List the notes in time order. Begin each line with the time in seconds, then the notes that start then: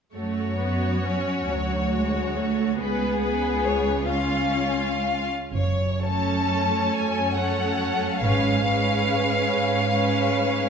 0.13 F#2 A3 F#4 C#5
0.59 B3
1.04 C#4
1.48 D2 F#3
1.93 G#3
2.37 A3
2.78 C#2 B3 G#4 B4
3.22 B4
3.64 C#5
4.03 C#4 F4
4.08 F5
5.54 F#1 F#2 C#5
6.03 A3 C#4 A4 C#5 A5
6.94 F#2 G#5
7.35 A3 C#4 A4 C#5 F#5
8.21 G#1 G#2 G#3 C#4 B4 C#5 F5
8.65 G#3 C#4 B4 C#5
9.51 G#2
9.90 G#3 C#4 B4 C#5